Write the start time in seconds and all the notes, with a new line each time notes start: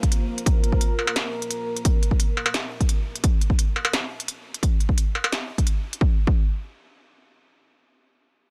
Already playing: A#3 F4 A#4 C5
0.03 kick, closed hi-hat
0.12 closed hi-hat
0.38 closed hi-hat
0.46 kick, closed hi-hat
0.64 closed hi-hat
0.72 kick
0.81 closed hi-hat
0.99 struck metal
1.07 struck metal
1.16 snare, closed hi-hat
1.42 closed hi-hat
1.51 closed hi-hat
1.76 closed hi-hat
1.85 kick, closed hi-hat
2.03 closed hi-hat
2.11 kick
2.20 closed hi-hat
2.37 struck metal
2.46 struck metal
2.54 snare, closed hi-hat
2.81 kick, closed hi-hat
2.89 closed hi-hat
3.16 closed hi-hat
3.24 kick, closed hi-hat
3.41 closed hi-hat
3.50 kick
3.59 closed hi-hat
3.76 struck metal
3.85 struck metal
3.93 snare, closed hi-hat
4.20 closed hi-hat
4.28 closed hi-hat
4.54 closed hi-hat
4.63 kick, closed hi-hat
4.80 closed hi-hat
4.89 kick
4.98 closed hi-hat
5.15 struck metal
5.24 struck metal
5.32 snare, closed hi-hat
5.58 kick, closed hi-hat
5.67 closed hi-hat
5.93 closed hi-hat
6.01 kick
6.27 kick